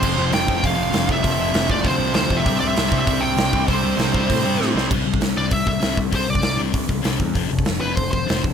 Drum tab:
CC |x---------------|----------------|----------------|----------------|
HH |----o---o---o---|o---o---o---o---|o---o---o---o---|o---o---o-------|
SD |----o-------o---|----o-------o---|----o-------o---|----o-------o-o-|
BD |o-----o-o-----o-|o-----o-o-----o-|o-----o-o-----o-|o-----o-o-------|

CC |x---------------|----------------|----------------|
HH |----o---o---o---|o---o---o---o---|o---o---o---o---|
SD |----o-------o---|----o-------o---|----o-------o---|
BD |o--o----o-o---o-|o--o----o-o---o-|o--o----o-o---o-|